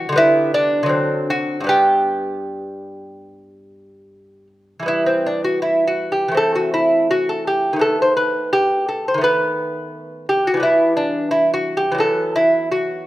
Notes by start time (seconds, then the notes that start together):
Already playing: G3 B3 F#4
0.09 D3 G3
0.16 B3 E4
0.54 D4
0.83 D3 F#3
0.89 C4
1.30 F#4
1.61 G2 G3
1.67 B3 G4
4.80 E3 G3
4.86 B3 E4
5.06 C4
5.26 D4
5.44 F#4
5.62 E4
5.88 F#4
6.12 G4
6.28 E3 A3
6.34 C4 A4
6.55 F#4
6.74 E4
7.11 F#4
7.29 A4
7.47 G4
7.73 D#3 A3
7.79 B3 A4
8.02 C5
8.17 B4
8.53 G4
8.89 A4
9.08 C5
9.14 D#3 A3
9.21 B3 B4
10.29 G4
10.47 F#4
10.54 E3 G3
10.60 B3 E4
10.97 D4
11.31 E4
11.54 F#4
11.77 G4
11.92 E3 F#3
11.98 B3 A4
12.36 E4
12.72 F#4